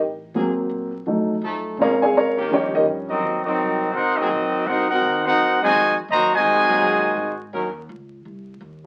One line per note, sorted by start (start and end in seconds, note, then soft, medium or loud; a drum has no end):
0.00 0.33 A1 medium
0.34 0.69 G#1 medium
0.34 0.91 F#3 medium
0.34 0.50 F#3 medium
0.34 0.91 A#3 soft
0.34 0.51 A#3 medium
0.34 0.50 C4 medium
0.34 0.91 C4 medium
0.34 0.51 G#4 medium
0.69 1.05 A#1 medium
1.06 1.41 F2 medium
1.06 1.33 F#3 medium
1.06 1.34 A3 soft
1.06 1.34 D#4 medium
1.42 1.77 F#2 loud
1.42 1.78 F3 medium
1.42 1.79 A3 loud
1.42 1.78 D#4 loud
1.42 1.79 A4 loud
1.77 2.13 A#2 medium
1.77 2.34 C#3 soft
1.77 1.94 F3 medium
1.77 2.35 G#3 soft
1.77 1.94 A#3 medium
1.77 2.35 C4 medium
1.77 1.94 C#4 medium
1.77 1.94 G#4 loud
1.82 2.02 A#4 medium
1.82 2.02 C#5 medium
1.82 2.01 F5 medium
1.82 2.02 A#5 medium
2.02 2.15 G#4 medium
2.02 2.15 C#5 medium
2.02 2.15 F5 medium
2.02 2.15 G#5 medium
2.13 2.49 G#2 medium
2.13 2.49 A#4 medium
2.13 2.49 F5 medium
2.13 2.49 A#5 medium
2.17 2.50 C#5 medium
2.37 2.84 D#3 loud
2.37 2.84 A#3 loud
2.37 2.83 C#4 loud
2.37 2.84 G4 loud
2.50 2.85 D#2 medium
2.50 3.19 F3 soft
2.50 3.19 G3 soft
2.50 3.19 C#4 medium
2.50 2.74 G4 medium
2.50 2.74 C#5 medium
2.50 2.74 G5 medium
2.54 2.73 D#5 medium
2.75 2.83 D#4 medium
2.75 2.83 G4 medium
2.75 2.82 A#4 medium
2.75 2.82 D#5 medium
2.85 3.20 G2 medium
3.09 3.43 F#3 medium
3.09 3.43 C4 medium
3.09 3.43 D#4 medium
3.09 3.43 F#4 medium
3.09 3.43 A#4 medium
3.09 3.43 D#5 medium
3.20 3.42 D#2 medium
3.45 3.91 F#3 medium
3.45 3.91 C4 medium
3.45 3.91 D#4 medium
3.45 3.91 F#4 medium
3.45 3.91 A#4 medium
3.45 3.91 D#5 medium
3.45 muted upright bass stroke soft
3.57 3.93 C2 medium
3.94 4.15 G#1 medium
3.94 4.17 C4 medium
3.94 4.17 D#4 medium
3.94 4.17 F#4 medium
3.94 4.16 A#4 medium
3.94 4.17 C5 medium
3.94 4.17 F#5 loud
4.17 4.27 F#3 loud
4.17 4.67 F#3 medium
4.17 4.27 A#3 medium
4.17 4.66 C4 medium
4.17 4.27 C4 medium
4.17 4.67 C4 medium
4.17 4.67 D#4 medium
4.17 4.66 F#4 medium
4.17 4.27 G#4 loud
4.17 4.66 A#4 medium
4.17 4.66 D#5 loud
4.17 muted upright bass stroke soft
4.30 4.51 A#1 medium
4.52 muted upright bass stroke soft
4.66 5.01 C2 loud
4.66 4.90 C4 medium
4.66 4.89 D#4 medium
4.66 4.90 F#4 medium
4.66 4.89 A#4 medium
4.66 4.89 C5 medium
4.66 4.90 F#5 loud
4.90 5.24 C4 loud
4.90 5.23 D#4 medium
4.90 5.24 F#4 medium
4.90 5.23 A#4 loud
4.90 5.23 C5 medium
4.90 5.23 F#5 loud
5.01 5.37 D#2 loud
5.26 5.60 C4 medium
5.26 5.59 D#4 loud
5.26 5.60 D#4 medium
5.26 5.60 F#4 medium
5.26 5.59 A#4 medium
5.26 5.59 C5 medium
5.26 5.59 F#5 loud
5.37 5.59 F#2 medium
5.60 5.96 C3 loud
5.60 5.96 D#3 loud
5.60 5.70 F#3 loud
5.60 5.96 G#3 loud
5.60 5.70 A#3 loud
5.60 5.70 C4 loud
5.60 5.96 F#4 medium
5.60 5.70 G#4 loud
5.60 5.96 C5 medium
5.60 5.95 D#5 medium
5.60 5.95 G#5 loud
5.60 muted upright bass stroke soft
5.73 6.08 F2 loud
6.08 6.30 D#2 loud
6.08 6.32 A#3 loud
6.08 6.32 F#4 loud
6.08 6.32 C5 loud
6.08 6.32 D#5 loud
6.08 6.32 A#5 loud
6.12 6.33 D#3 loud
6.12 6.33 F#3 medium
6.34 7.38 C3 loud
6.34 7.38 D#3 loud
6.34 7.38 G#3 loud
6.34 7.38 F#4 medium
6.34 7.38 C5 medium
6.34 7.38 D#5 medium
6.34 7.37 G#5 loud
6.44 6.80 F2 loud
6.67 7.14 F#3 loud
6.67 7.15 A#3 loud
6.67 7.15 C4 medium
6.67 7.15 G#4 loud
6.81 7.16 F#2 medium
7.17 7.52 G#2 loud
7.52 7.88 D#2 medium
7.52 7.69 F#3 medium
7.52 7.69 C#4 medium
7.52 7.68 D#4 medium
7.52 7.68 A#4 loud
7.89 8.24 C#2 medium
8.25 8.60 C2 medium
8.61 8.86 D#2 medium